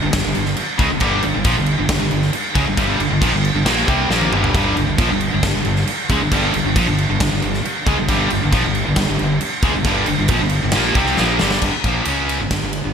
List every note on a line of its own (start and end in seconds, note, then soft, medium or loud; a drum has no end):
0.02 0.13 G1 medium
0.02 0.12 G2 medium
0.02 0.13 D3 medium
0.13 0.24 G1 medium
0.13 0.23 G2 medium
0.13 0.23 D3 medium
0.13 kick loud
0.13 snare loud
0.13 crash medium
0.24 0.36 G1 medium
0.24 0.34 G2 medium
0.24 0.34 D3 medium
0.35 0.57 G1 medium
0.35 0.53 G2 medium
0.35 0.53 D3 medium
0.35 crash medium
0.45 snare soft
0.57 muted distorted electric guitar stroke medium
0.57 muted overdriven electric guitar stroke medium
0.57 muted fingered electric bass stroke soft
0.57 crash medium
0.78 0.90 C#2 loud
0.78 0.89 C#3 loud
0.78 0.90 G#3 loud
0.78 kick loud
0.78 crash medium
0.90 1.01 G1 medium
0.90 0.98 G2 medium
0.90 0.99 D3 medium
1.00 1.22 G1 loud
1.00 1.22 G2 medium
1.00 1.22 D3 medium
1.00 1.23 G3 loud
1.00 kick loud
1.00 crash medium
1.23 1.35 G1 medium
1.23 1.33 G2 medium
1.23 1.33 D3 medium
1.23 crash medium
1.34 1.44 G1 medium
1.34 1.46 G2 medium
1.34 1.44 D3 medium
1.44 1.56 A#1 loud
1.44 1.56 A#2 loud
1.44 1.56 F3 loud
1.44 kick loud
1.44 crash medium
1.57 1.78 G1 medium
1.57 1.75 G2 medium
1.57 1.75 D3 medium
1.66 crash medium
1.77 1.89 G1 medium
1.77 1.88 G2 medium
1.77 1.89 D3 medium
1.89 2.00 G1 medium
1.89 1.99 G2 medium
1.89 1.99 D3 medium
1.89 kick loud
1.89 snare loud
1.89 crash medium
2.00 2.12 G1 medium
2.00 2.10 G2 medium
2.00 2.10 D3 medium
2.11 2.33 G1 medium
2.11 2.29 G2 medium
2.11 2.29 D3 medium
2.11 crash medium
2.22 snare soft
2.33 muted overdriven electric guitar stroke medium
2.33 muted distorted electric guitar stroke medium
2.33 muted fingered electric bass stroke soft
2.33 crash medium
2.55 2.66 C#2 loud
2.55 2.66 C#3 loud
2.55 2.66 G#3 loud
2.55 kick loud
2.55 crash medium
2.67 2.77 G1 medium
2.67 2.76 G2 medium
2.67 2.77 D3 medium
2.77 2.99 G1 loud
2.77 2.98 G2 medium
2.77 2.99 D3 loud
2.77 3.00 G3 loud
2.77 kick loud
2.77 crash medium
2.99 3.10 G1 medium
2.99 3.10 G2 medium
2.99 3.10 D3 medium
2.99 crash medium
3.11 3.22 G1 medium
3.11 3.22 G2 medium
3.11 3.22 D3 medium
3.22 3.32 A#1 loud
3.22 3.33 A#2 medium
3.22 3.33 F3 loud
3.22 kick loud
3.22 crash medium
3.32 3.53 G1 medium
3.32 3.51 G2 medium
3.32 3.51 D3 medium
3.45 crash medium
3.54 3.65 G1 medium
3.54 3.67 G2 medium
3.54 3.65 D3 medium
3.65 3.87 A#1 loud
3.65 3.87 A#2 medium
3.65 3.88 F3 medium
3.65 3.88 A#3 loud
3.65 snare loud
3.65 crash medium
3.88 4.09 C2 loud
3.88 4.10 C3 medium
3.88 4.10 G3 loud
3.88 4.11 C4 loud
3.88 kick loud
3.88 crash medium
4.10 4.31 A#1 medium
4.10 4.32 A#2 medium
4.10 4.32 F3 loud
4.10 4.33 A#3 medium
4.10 snare medium
4.21 high tom medium
4.33 4.53 G1 loud
4.33 4.55 G2 medium
4.33 4.55 D3 medium
4.33 4.56 G3 medium
4.33 mid tom medium
4.44 floor tom medium
4.53 4.75 G1 loud
4.53 4.77 G2 medium
4.53 4.74 D3 loud
4.53 4.76 G3 loud
4.53 kick loud
4.53 crash medium
4.57 4.77 D3 loud
4.57 4.78 G3 loud
4.77 4.88 G1 medium
4.77 4.89 G2 medium
4.77 4.89 D3 medium
4.77 crash medium
4.88 4.98 G1 medium
4.88 5.00 G2 medium
4.88 5.00 D3 medium
4.98 5.09 A#1 loud
4.98 5.10 A#2 medium
4.98 5.09 F3 loud
4.98 kick loud
4.98 crash medium
5.02 5.11 F3 loud
5.10 5.31 G1 medium
5.10 5.29 G2 medium
5.10 5.29 D3 medium
5.21 crash medium
5.34 5.42 G1 medium
5.34 5.43 G2 medium
5.34 5.44 D3 medium
5.43 5.53 G1 medium
5.43 5.55 G2 medium
5.43 5.55 D3 medium
5.43 kick loud
5.43 snare loud
5.43 crash medium
5.55 5.65 G1 medium
5.55 5.66 G2 medium
5.55 5.66 D3 medium
5.65 5.86 G1 medium
5.65 5.84 G2 medium
5.65 5.84 D3 medium
5.65 crash medium
5.76 snare soft
5.87 muted distorted electric guitar stroke medium
5.87 muted fingered electric bass stroke soft
5.87 muted overdriven electric guitar stroke medium
5.87 crash medium
6.10 6.20 C#2 loud
6.10 6.21 C#3 medium
6.10 6.21 G#3 loud
6.10 kick loud
6.10 crash medium
6.21 6.31 G1 medium
6.21 6.31 G2 medium
6.21 6.32 D3 medium
6.32 6.52 G1 loud
6.32 6.53 G2 loud
6.32 6.54 D3 loud
6.32 6.54 G3 loud
6.32 kick loud
6.32 crash medium
6.54 6.64 G1 medium
6.54 6.65 G2 medium
6.54 6.65 D3 medium
6.54 crash medium
6.64 6.75 G1 medium
6.64 6.77 G2 medium
6.64 6.75 D3 medium
6.76 6.86 A#1 medium
6.76 6.86 A#2 loud
6.76 6.87 F3 loud
6.76 kick loud
6.76 crash medium
6.87 7.08 G1 medium
6.87 7.05 G2 medium
6.87 7.05 D3 medium
6.98 crash medium
7.10 7.20 G1 medium
7.10 7.21 G2 medium
7.10 7.21 D3 medium
7.20 7.31 G1 medium
7.20 7.32 G2 medium
7.20 7.32 D3 medium
7.20 kick loud
7.20 snare loud
7.20 crash medium
7.33 7.42 G1 medium
7.33 7.43 G2 medium
7.33 7.43 D3 medium
7.42 7.64 G1 medium
7.42 7.61 G2 medium
7.42 7.61 D3 medium
7.42 crash medium
7.54 snare soft
7.65 muted fingered electric bass stroke soft
7.65 muted distorted electric guitar stroke medium
7.65 muted overdriven electric guitar stroke medium
7.65 crash medium
7.87 7.97 C#2 loud
7.87 7.97 C#3 loud
7.87 7.98 G#3 loud
7.87 kick loud
7.87 crash medium
7.98 8.08 G1 medium
7.98 8.07 G2 medium
7.98 8.08 D3 medium
8.08 8.29 G1 loud
8.08 8.30 G2 loud
8.08 8.30 D3 loud
8.08 8.31 G3 loud
8.08 kick loud
8.08 crash medium
8.30 8.41 G1 medium
8.30 8.42 G2 medium
8.30 8.42 D3 medium
8.30 crash medium
8.43 8.52 G1 medium
8.43 8.53 G2 medium
8.43 8.53 D3 medium
8.52 8.63 A#1 loud
8.52 8.63 A#2 medium
8.52 8.64 F3 loud
8.52 kick loud
8.52 crash medium
8.64 8.85 G1 medium
8.64 8.82 G2 medium
8.64 8.82 D3 medium
8.75 crash medium
8.86 8.96 G1 medium
8.86 8.96 G2 medium
8.86 8.97 D3 medium
8.96 9.07 G1 medium
8.96 9.08 G2 medium
8.96 9.09 D3 medium
8.96 kick loud
8.96 snare loud
8.96 crash medium
9.09 9.19 G1 medium
9.09 9.19 G2 medium
9.09 9.20 D3 medium
9.19 9.41 G1 medium
9.19 9.37 G2 medium
9.19 9.38 D3 medium
9.19 crash medium
9.41 muted distorted electric guitar stroke medium
9.41 muted overdriven electric guitar stroke medium
9.41 muted fingered electric bass stroke soft
9.41 crash medium
9.62 9.73 C#2 loud
9.62 9.74 C#3 medium
9.62 9.75 G#3 loud
9.62 kick loud
9.62 crash medium
9.75 9.84 G1 medium
9.75 9.86 G2 medium
9.75 9.86 D3 medium
9.84 10.06 G1 loud
9.84 10.08 G2 medium
9.84 10.08 D3 loud
9.84 10.08 G3 medium
9.84 kick loud
9.84 crash medium
10.06 10.18 G1 medium
10.06 10.20 G2 medium
10.06 10.20 D3 medium
10.06 crash medium
10.19 10.28 G1 medium
10.19 10.31 G2 medium
10.19 10.31 D3 medium
10.28 10.40 A#1 medium
10.28 kick loud
10.28 crash medium
10.32 10.41 A#2 medium
10.32 10.42 F3 loud
10.41 10.62 G1 medium
10.41 10.59 G2 medium
10.41 10.59 D3 medium
10.49 crash medium
10.64 10.74 G1 medium
10.64 10.75 G2 medium
10.64 10.75 D3 medium
10.72 10.95 A#1 medium
10.72 10.96 A#2 loud
10.72 10.96 F3 loud
10.72 snare loud
10.72 crash medium
10.76 10.97 A#3 loud
10.95 11.16 C2 loud
10.95 11.18 C3 medium
10.95 11.18 G3 loud
10.95 11.19 C4 loud
10.95 kick loud
10.95 crash medium
11.06 snare soft
11.17 11.39 A#1 loud
11.17 11.40 A#2 medium
11.17 11.40 F3 loud
11.17 11.41 A#3 medium
11.17 snare medium
11.39 11.61 G1 medium
11.39 11.62 G2 medium
11.39 11.63 D3 medium
11.39 11.63 G3 loud
11.39 snare medium
11.50 snare medium
11.62 11.73 G1 medium
11.62 11.73 G2 medium
11.62 11.74 D3 medium
11.62 kick loud
11.62 crash loud
11.74 muted distorted electric guitar stroke medium
11.74 muted overdriven electric guitar stroke soft
11.84 12.05 A#1 medium
11.84 12.07 A#2 medium
11.84 12.07 F3 loud
11.84 12.07 A#3 loud
11.84 kick loud
11.84 ride medium
12.05 12.38 C#2 medium
12.05 12.39 C#3 medium
12.05 12.40 G#3 medium
12.05 12.40 C#4 loud
12.05 ride medium
12.29 ride medium
12.40 12.50 G1 medium
12.40 12.50 G2 medium
12.40 12.51 D3 medium
12.51 12.61 G1 medium
12.51 12.62 G2 medium
12.51 12.62 D3 medium
12.51 kick loud
12.51 snare loud
12.51 ride medium
12.63 12.83 G1 medium
12.63 12.80 G2 medium
12.63 12.81 D3 medium
12.73 ride medium
12.84 12.93 G1 medium
12.84 12.93 G2 medium
12.84 12.93 D3 medium